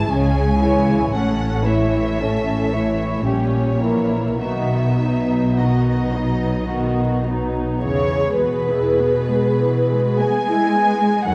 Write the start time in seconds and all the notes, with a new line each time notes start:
Already playing: G#1 G#2 E3 G#3 E4 A5
0.11 C#2 C#3 G#3 C#4 G#4 G#5
0.62 E3 G#3 E4 C#5
1.14 A1 A2 A3 C#4 A4 F#5
1.65 E3 A3 E4 C#5 E5
2.19 A3 C#4 A4
2.71 E3 A3 E4 C#5
3.25 A#1 A#2 G3 C#4 G4 C#5
3.81 E3 A#3 E4 A#4
4.40 B1 B2 D#3 B3 D#4 F#4 E5
4.99 F#3 B3 D#4
5.57 D#3 B3 D#4 F#4 D#5
6.12 F#3 B3 D#4
6.68 D#3 B3 D#4 F#4
7.24 F#3 B3 D#4
7.83 E2 C#3 E3 G#4 C#5
8.12 G#3
8.39 B2 B3 B4
8.68 E4
8.98 B3
9.29 G#3
9.60 E3
9.91 G#3
10.19 G#3 B3 G#5
10.49 E4
10.75 B3
11.01 G#3
11.25 E2 D#3 F#3 A4 F#5